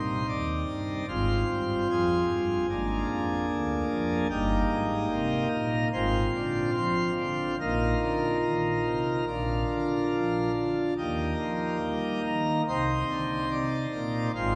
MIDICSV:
0, 0, Header, 1, 2, 480
1, 0, Start_track
1, 0, Key_signature, -3, "major"
1, 0, Tempo, 809717
1, 651, Time_signature, 4, 2, 24, 8
1, 4007, Tempo, 842697
1, 8445, End_track
2, 0, Start_track
2, 0, Title_t, "Pipe organ"
2, 0, Program_c, 0, 19
2, 0, Note_on_c, 0, 43, 54
2, 0, Note_on_c, 0, 60, 40
2, 0, Note_on_c, 0, 63, 35
2, 0, Note_on_c, 0, 72, 69
2, 133, Note_off_c, 0, 43, 0
2, 156, Note_off_c, 0, 72, 0
2, 169, Note_on_c, 0, 74, 75
2, 172, Note_on_c, 0, 39, 55
2, 376, Note_off_c, 0, 39, 0
2, 403, Note_on_c, 0, 43, 52
2, 610, Note_off_c, 0, 43, 0
2, 627, Note_off_c, 0, 63, 0
2, 628, Note_off_c, 0, 60, 0
2, 636, Note_off_c, 0, 74, 0
2, 642, Note_on_c, 0, 60, 38
2, 642, Note_on_c, 0, 72, 91
2, 643, Note_on_c, 0, 65, 39
2, 644, Note_on_c, 0, 32, 60
2, 644, Note_on_c, 0, 44, 64
2, 852, Note_off_c, 0, 32, 0
2, 853, Note_off_c, 0, 44, 0
2, 884, Note_on_c, 0, 43, 54
2, 1092, Note_off_c, 0, 43, 0
2, 1114, Note_off_c, 0, 72, 0
2, 1128, Note_on_c, 0, 41, 65
2, 1129, Note_on_c, 0, 68, 98
2, 1332, Note_off_c, 0, 41, 0
2, 1364, Note_on_c, 0, 43, 57
2, 1568, Note_off_c, 0, 43, 0
2, 1579, Note_off_c, 0, 60, 0
2, 1580, Note_off_c, 0, 65, 0
2, 1596, Note_on_c, 0, 32, 52
2, 1598, Note_on_c, 0, 58, 37
2, 1599, Note_on_c, 0, 62, 43
2, 1600, Note_on_c, 0, 44, 57
2, 1805, Note_off_c, 0, 32, 0
2, 1806, Note_off_c, 0, 44, 0
2, 1844, Note_on_c, 0, 41, 58
2, 2049, Note_off_c, 0, 41, 0
2, 2085, Note_on_c, 0, 38, 66
2, 2287, Note_off_c, 0, 38, 0
2, 2309, Note_on_c, 0, 41, 68
2, 2516, Note_off_c, 0, 41, 0
2, 2532, Note_off_c, 0, 58, 0
2, 2532, Note_off_c, 0, 62, 0
2, 2534, Note_off_c, 0, 68, 0
2, 2548, Note_on_c, 0, 67, 102
2, 2549, Note_on_c, 0, 43, 71
2, 2549, Note_on_c, 0, 58, 44
2, 2549, Note_on_c, 0, 63, 46
2, 2553, Note_on_c, 0, 31, 62
2, 2757, Note_off_c, 0, 43, 0
2, 2760, Note_off_c, 0, 31, 0
2, 2794, Note_on_c, 0, 44, 62
2, 3001, Note_off_c, 0, 44, 0
2, 3037, Note_on_c, 0, 48, 76
2, 3242, Note_off_c, 0, 48, 0
2, 3252, Note_off_c, 0, 67, 0
2, 3278, Note_on_c, 0, 46, 70
2, 3279, Note_on_c, 0, 70, 88
2, 3482, Note_off_c, 0, 46, 0
2, 3483, Note_off_c, 0, 70, 0
2, 3490, Note_off_c, 0, 58, 0
2, 3490, Note_off_c, 0, 63, 0
2, 3514, Note_on_c, 0, 32, 66
2, 3515, Note_on_c, 0, 44, 63
2, 3515, Note_on_c, 0, 72, 88
2, 3516, Note_on_c, 0, 60, 46
2, 3517, Note_on_c, 0, 65, 52
2, 3722, Note_off_c, 0, 32, 0
2, 3723, Note_off_c, 0, 44, 0
2, 3766, Note_on_c, 0, 50, 60
2, 3972, Note_off_c, 0, 50, 0
2, 3989, Note_off_c, 0, 72, 0
2, 4005, Note_on_c, 0, 53, 63
2, 4006, Note_on_c, 0, 72, 95
2, 4207, Note_off_c, 0, 53, 0
2, 4247, Note_on_c, 0, 50, 59
2, 4449, Note_off_c, 0, 50, 0
2, 4459, Note_off_c, 0, 60, 0
2, 4460, Note_off_c, 0, 65, 0
2, 4469, Note_off_c, 0, 72, 0
2, 4485, Note_on_c, 0, 65, 37
2, 4486, Note_on_c, 0, 34, 59
2, 4487, Note_on_c, 0, 46, 60
2, 4487, Note_on_c, 0, 70, 81
2, 4488, Note_on_c, 0, 63, 45
2, 4688, Note_off_c, 0, 34, 0
2, 4688, Note_off_c, 0, 46, 0
2, 4725, Note_on_c, 0, 50, 55
2, 4927, Note_off_c, 0, 50, 0
2, 4956, Note_on_c, 0, 51, 61
2, 5163, Note_off_c, 0, 51, 0
2, 5195, Note_on_c, 0, 48, 49
2, 5406, Note_off_c, 0, 48, 0
2, 5424, Note_off_c, 0, 65, 0
2, 5426, Note_off_c, 0, 63, 0
2, 5439, Note_on_c, 0, 65, 34
2, 5441, Note_on_c, 0, 46, 51
2, 5441, Note_on_c, 0, 62, 36
2, 5442, Note_on_c, 0, 34, 50
2, 5648, Note_off_c, 0, 46, 0
2, 5649, Note_off_c, 0, 34, 0
2, 5688, Note_on_c, 0, 50, 47
2, 5891, Note_off_c, 0, 50, 0
2, 5931, Note_on_c, 0, 53, 48
2, 6135, Note_off_c, 0, 53, 0
2, 6148, Note_off_c, 0, 70, 0
2, 6172, Note_on_c, 0, 50, 44
2, 6378, Note_off_c, 0, 50, 0
2, 6387, Note_off_c, 0, 62, 0
2, 6387, Note_off_c, 0, 65, 0
2, 6410, Note_on_c, 0, 63, 39
2, 6411, Note_on_c, 0, 39, 56
2, 6412, Note_on_c, 0, 67, 75
2, 6413, Note_on_c, 0, 51, 55
2, 6413, Note_on_c, 0, 58, 38
2, 6618, Note_off_c, 0, 39, 0
2, 6620, Note_off_c, 0, 51, 0
2, 6660, Note_on_c, 0, 53, 53
2, 6863, Note_off_c, 0, 53, 0
2, 6899, Note_on_c, 0, 55, 58
2, 7102, Note_off_c, 0, 55, 0
2, 7115, Note_off_c, 0, 67, 0
2, 7139, Note_on_c, 0, 70, 76
2, 7140, Note_on_c, 0, 51, 46
2, 7342, Note_off_c, 0, 70, 0
2, 7343, Note_off_c, 0, 51, 0
2, 7353, Note_off_c, 0, 63, 0
2, 7354, Note_off_c, 0, 58, 0
2, 7380, Note_on_c, 0, 36, 49
2, 7380, Note_on_c, 0, 48, 58
2, 7380, Note_on_c, 0, 72, 89
2, 7381, Note_on_c, 0, 60, 38
2, 7381, Note_on_c, 0, 63, 40
2, 7582, Note_off_c, 0, 36, 0
2, 7582, Note_off_c, 0, 48, 0
2, 7617, Note_on_c, 0, 50, 49
2, 7819, Note_off_c, 0, 50, 0
2, 7841, Note_off_c, 0, 72, 0
2, 7850, Note_on_c, 0, 48, 52
2, 7852, Note_on_c, 0, 74, 90
2, 8054, Note_off_c, 0, 48, 0
2, 8094, Note_on_c, 0, 46, 50
2, 8295, Note_off_c, 0, 46, 0
2, 8309, Note_off_c, 0, 60, 0
2, 8309, Note_off_c, 0, 63, 0
2, 8314, Note_off_c, 0, 74, 0
2, 8330, Note_on_c, 0, 60, 38
2, 8331, Note_on_c, 0, 32, 62
2, 8332, Note_on_c, 0, 72, 94
2, 8333, Note_on_c, 0, 44, 61
2, 8333, Note_on_c, 0, 65, 46
2, 8445, Note_off_c, 0, 32, 0
2, 8445, Note_off_c, 0, 44, 0
2, 8445, Note_off_c, 0, 60, 0
2, 8445, Note_off_c, 0, 65, 0
2, 8445, Note_off_c, 0, 72, 0
2, 8445, End_track
0, 0, End_of_file